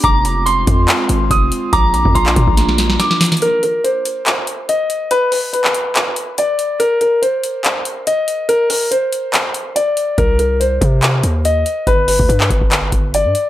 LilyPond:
<<
  \new Staff \with { instrumentName = "Synth bell" } { \time 4/4 \key c \minor \tempo 4 = 142 d'''4 c'''2. | d'''4 bes''2 r4 | r1 | r1 |
r1 | r1 | r1 | r1 | }
  \new Staff \with { instrumentName = "Grand piano" } { \time 4/4 \key c \minor bes''8 bes''8 c'''2 ees'''4 | bes''8 bes''8 c'''2 d'''4 | bes'8 bes'8 c''2 ees''4 | b'8 b'8 b'2 d''4 |
bes'8 bes'8 c''2 ees''4 | bes'8 bes'8 c''2 d''4 | bes'8 bes'8 c''2 ees''4 | b'8 b'8 b'2 d''4 | }
  \new Staff \with { instrumentName = "Analog synth pad" } { \time 4/4 \key c \minor <aes c' f'>1 | <bes d' f'>1 | r1 | r1 |
r1 | r1 | r1 | r1 | }
  \new Staff \with { instrumentName = "808-style bass" } { \clef bass \time 4/4 \key c \minor f,,4. f,8 r8 aes,,8 f,,8 r8 | bes,,8. f,16 bes,,8 bes,16 bes,,4~ bes,,16 r4 | r1 | r1 |
r1 | r1 | c,4. c4 ees,4 r8 | g,,8. d,16 g,8 g,,16 g,,8. g,,8. g,16 r8 | }
  \new DrumStaff \with { instrumentName = "Drums" } \drummode { \time 4/4 <hh bd>8 hh8 hh8 <hh bd>8 <hc hh>8 hh8 <hh bd>8 hh8 | <hh bd>8 hh16 bd16 hh16 hc16 <hh bd>16 bd16 <hh sn>16 sn16 <hh sn>16 sn16 <hh sn>16 sn16 <hh hho sn>32 hh32 <hh sn>32 hh32 | hh8 hh8 hh8 hh8 <hc hh>8 hh8 hh8 hh8 | hh8 hho8 hh16 hc16 hh8 <hc hh>8 hh8 hh8 hh8 |
hh8 hh8 hh8 hh8 <hc hh>8 hh8 hh8 hh8 | hh8 hho8 hh8 hh8 <hc hh>8 hh8 hh8 hh8 | <hh bd>8 hh8 hh8 <hh bd>8 <hc hh>8 hh8 hh8 hh8 | <hh bd>8 hho16 bd16 hh16 hc16 <hh bd>16 bd16 <hc hh>8 <hh bd>8 hh8 hh8 | }
>>